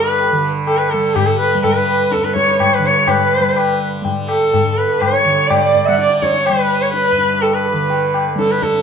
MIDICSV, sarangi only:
0, 0, Header, 1, 2, 480
1, 0, Start_track
1, 0, Tempo, 481155
1, 1147, Time_signature, 4, 2, 24, 8
1, 8800, End_track
2, 0, Start_track
2, 0, Title_t, "Sarangi"
2, 0, Program_c, 0, 110
2, 0, Note_on_c, 0, 70, 80
2, 87, Note_off_c, 0, 70, 0
2, 87, Note_on_c, 0, 71, 80
2, 422, Note_off_c, 0, 71, 0
2, 668, Note_on_c, 0, 69, 69
2, 773, Note_on_c, 0, 71, 65
2, 788, Note_off_c, 0, 69, 0
2, 899, Note_on_c, 0, 69, 66
2, 914, Note_off_c, 0, 71, 0
2, 1141, Note_on_c, 0, 67, 80
2, 1156, Note_off_c, 0, 69, 0
2, 1259, Note_on_c, 0, 69, 74
2, 1274, Note_off_c, 0, 67, 0
2, 1384, Note_off_c, 0, 69, 0
2, 1391, Note_on_c, 0, 71, 75
2, 1613, Note_off_c, 0, 71, 0
2, 1622, Note_on_c, 0, 71, 80
2, 2111, Note_on_c, 0, 69, 77
2, 2126, Note_off_c, 0, 71, 0
2, 2234, Note_on_c, 0, 71, 79
2, 2249, Note_off_c, 0, 69, 0
2, 2347, Note_off_c, 0, 71, 0
2, 2353, Note_on_c, 0, 73, 84
2, 2576, Note_off_c, 0, 73, 0
2, 2607, Note_on_c, 0, 73, 80
2, 2730, Note_on_c, 0, 71, 77
2, 2745, Note_off_c, 0, 73, 0
2, 2851, Note_on_c, 0, 73, 82
2, 2866, Note_off_c, 0, 71, 0
2, 3088, Note_on_c, 0, 71, 91
2, 3103, Note_off_c, 0, 73, 0
2, 3801, Note_off_c, 0, 71, 0
2, 4277, Note_on_c, 0, 69, 78
2, 4755, Note_on_c, 0, 71, 74
2, 4770, Note_off_c, 0, 69, 0
2, 4997, Note_on_c, 0, 73, 89
2, 5012, Note_off_c, 0, 71, 0
2, 5464, Note_on_c, 0, 74, 93
2, 5479, Note_off_c, 0, 73, 0
2, 5837, Note_on_c, 0, 76, 74
2, 5852, Note_off_c, 0, 74, 0
2, 5860, Note_on_c, 0, 78, 63
2, 5875, Note_off_c, 0, 76, 0
2, 5904, Note_on_c, 0, 76, 76
2, 5919, Note_off_c, 0, 78, 0
2, 5959, Note_off_c, 0, 76, 0
2, 5975, Note_on_c, 0, 74, 85
2, 6206, Note_on_c, 0, 73, 77
2, 6221, Note_off_c, 0, 74, 0
2, 6448, Note_on_c, 0, 71, 80
2, 6463, Note_off_c, 0, 73, 0
2, 6802, Note_on_c, 0, 73, 73
2, 6817, Note_off_c, 0, 71, 0
2, 6903, Note_off_c, 0, 73, 0
2, 6909, Note_on_c, 0, 71, 95
2, 7394, Note_on_c, 0, 69, 78
2, 7409, Note_off_c, 0, 71, 0
2, 7522, Note_on_c, 0, 71, 75
2, 7537, Note_off_c, 0, 69, 0
2, 8234, Note_off_c, 0, 71, 0
2, 8366, Note_on_c, 0, 69, 68
2, 8489, Note_on_c, 0, 71, 67
2, 8504, Note_off_c, 0, 69, 0
2, 8603, Note_on_c, 0, 69, 73
2, 8618, Note_off_c, 0, 71, 0
2, 8800, Note_off_c, 0, 69, 0
2, 8800, End_track
0, 0, End_of_file